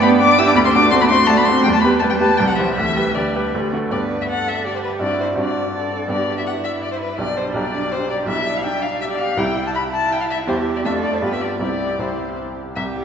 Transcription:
Already playing: G2 B3 D4 G4
0.02 B3 D4 G4 B5
0.20 B3 D4 G4 D6
0.38 B3 D4 E4 G4 E6
0.47 D4 D6
0.55 D2 B3 B5
0.65 C4 C6
0.73 A3 D4 F#4 D6
0.91 A3 C4 D4 F#4 C6
1.01 B3 B5
1.09 A3 C4 D4 F#4 C6
1.27 A3 D4 F#4 A5
1.37 B3 B5
1.45 A3 C4 D4 F#4 C6
1.63 E2 G3 G5
1.73 A3 A5
1.81 G3 B3 G4 B4 B5
1.99 G3 A3 G4 B4 A5
2.10 G3 G5
2.18 G3 A3 G4 B4 A5
2.37 C2 G3 G5
2.48 F#3 F#5
2.56 E3 G3 G4 C5 E5
2.75 D2 E3 E5
2.97 G3 G4 B4
3.14 D3 G3 G4 B4 D5
3.36 G3 G4 B4
3.55 D2
3.73 A3 F#4 A4
3.91 G2 B3 D4 G4 B4 D5
4.21 E5
4.29 A4 F#5
4.48 E5
4.66 G4 D5
4.76 C5
4.84 B4
4.99 G2 C4 D4 E4 F#4 D5
5.20 C5
5.36 G2 C4 D4 F#4 D5
5.74 A4
6.08 G2 B3 D4 G4 D5
6.38 E5
6.46 E4 F#5
6.64 E5
6.83 D5
6.92 C5
7.01 B4
7.18 B1 G3 D4 G4 D5
7.37 C5
7.54 B1 G3 D4 G4 D5
7.92 G4 C5
8.10 D5
8.26 B1 G3 D4 E4 G4 E5
8.57 F5
8.64 D4 G5
8.82 F5
9.01 G4 E5
9.10 D5
9.18 F5
9.37 C2 G3 E4 G4 G5
9.67 A5
9.74 E4 B5
9.94 A5
10.12 G5
10.21 F5
10.30 E5
10.47 E2 G3 E4 G4 C5
10.76 D5
10.84 F2 A3 D4 F4 A4 E5
11.04 D5
11.13 C5
11.21 G2 G3 B3 F4 G4 B4
11.33 E5
11.41 D5
11.59 C2 G3 C4 E4 G4 D5
11.99 C2 G3 C4 E4 C5
12.76 C2 G4 E5
12.96 G3

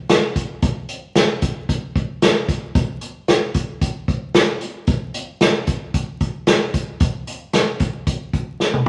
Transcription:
0.09 snare, closed hi-hat
0.36 kick, closed hi-hat
0.62 kick, closed hi-hat
0.89 closed hi-hat
1.15 snare, closed hi-hat
1.42 kick, closed hi-hat
1.69 kick, closed hi-hat
1.96 kick, closed hi-hat
2.22 snare, closed hi-hat
2.48 kick, closed hi-hat
2.75 kick, closed hi-hat
3.01 closed hi-hat
3.28 snare, closed hi-hat
3.54 kick, closed hi-hat
3.81 kick, closed hi-hat
4.08 kick, closed hi-hat
4.34 snare, closed hi-hat
4.61 closed hi-hat
4.87 kick, closed hi-hat
5.14 closed hi-hat
5.41 snare, closed hi-hat
5.67 kick, closed hi-hat
5.94 kick, closed hi-hat
6.20 kick, closed hi-hat
6.47 snare, closed hi-hat
6.74 kick, closed hi-hat
7.00 kick, closed hi-hat
7.27 closed hi-hat
7.53 snare, closed hi-hat
7.79 kick, closed hi-hat
8.07 kick, closed hi-hat
8.33 kick, closed hi-hat
8.60 snare
8.73 high tom

